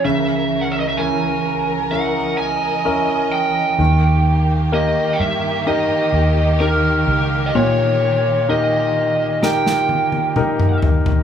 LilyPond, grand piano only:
\new Staff \with { instrumentName = "Grand piano" } { \time 4/4 \key dis \phrygian \tempo 4 = 64 cis4 <cis' e' ais'>4 <cis' e' ais'>4 <cis' e' ais'>4 | dis4 <ais g' ais'>4 <dis' g' ais'>4 <dis' g' ais'>4 | ais,4 <dis' g' ais'>4 <dis' g' ais'>4 <dis' g' ais'>4 | }